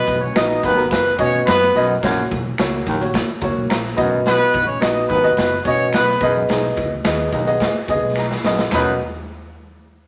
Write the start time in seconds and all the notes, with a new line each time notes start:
Already playing: B3 F#4 B4 D#5
0.07 B1, kick, closed hi-hat
0.20 C#4 C#5, high conga
0.34 A#1 B3 D#4 F#4 D#5, finger snap, snare, closed hi-hat
0.50 muted conga, high conga
0.62 G#1 D#2 B3 B4, kick, closed hi-hat, high conga, low conga
0.75 B3 F#4 A#4, closed hi-hat
0.89 F#1 B3 B4, kick, snare, closed hi-hat, muted conga, high conga
1.05 closed hi-hat, muted conga
1.17 B2 B3 C#4 F#4 C#5 D#5, kick, closed hi-hat
1.35 high conga
1.46 F#2 B3 B4, finger snap, snare, closed hi-hat
1.61 snare, muted conga, high conga
1.74 B1 F#2 B3 F#4 D#5, closed hi-hat, low conga
2.01 A#1 F#2 A#3 F#4 C#5, kick, snare, closed hi-hat, muted conga, low conga
2.31 B1, kick, closed hi-hat
2.46 high conga
2.58 C#2 A#3 F#4 C#5, finger snap, snare, closed hi-hat
2.73 high conga
2.87 A#1 D#2, kick, closed hi-hat, high conga, low conga
3.00 A#3 F#4 C#5, closed hi-hat
3.14 kick, snare, closed hi-hat, muted conga, high conga
3.28 closed hi-hat
3.41 C#2 A#3 F#4 C#5 F#5, kick, closed hi-hat
3.57 B1, high conga
3.70 A#1 A#5, finger snap, snare, closed hi-hat
3.84 snare, muted conga, high conga
3.96 B1 F#2 B3 F#4 D#5 B5, kick, closed hi-hat, low conga
4.25 B2 B3 B4, snare, closed hi-hat, low conga
4.38 muted conga
4.54 A#1, kick, closed hi-hat
4.66 C#4 C#5, high conga
4.80 A#1 B3 D#4 F#4 D#5, finger snap, snare, closed hi-hat, muted conga
4.94 muted conga, high conga
5.08 G#1 D#2 B3 B4, kick, closed hi-hat, high conga, low conga
5.22 B3 F#4 D#5, closed hi-hat
5.36 F#1 B3 B4, kick, snare, closed hi-hat, high conga
5.52 closed hi-hat, muted conga
5.64 B2 B3 C#4 F#4 C#5 D#5, kick, closed hi-hat
5.81 high conga
5.93 B1 B3 B4, finger snap, snare, closed hi-hat, muted conga
6.08 snare, muted conga, high conga
6.20 B1 F#2 B3 G#4 D#5, kick, closed hi-hat, low conga
6.48 B1 G#2, snare, closed hi-hat, muted conga, low conga
6.62 muted conga
6.76 C#2, kick, closed hi-hat
6.91 high conga
7.04 D#2 B3 G#4 D#5, finger snap, snare, closed hi-hat
7.20 muted conga, high conga
7.32 B1 D#2 D#5, kick, closed hi-hat, high conga, low conga
7.46 B3 G#4 D#5 F#5, closed hi-hat
7.60 G#5, kick, snare, closed hi-hat, muted conga, high conga
7.75 muted conga
7.88 C#2 B3 G#4 D#5 G#5, kick, closed hi-hat
8.03 B1, high conga
8.16 A#5, finger snap, snare
8.31 snare, muted conga, high conga
8.44 A#1 F#2 B3 G#4 D#5 B5, snare, low conga
8.59 snare
8.71 B1 F#2 F#3 B3 D#4 F#4 B4 D#5, finger snap, snare, floor tom, ride bell, high conga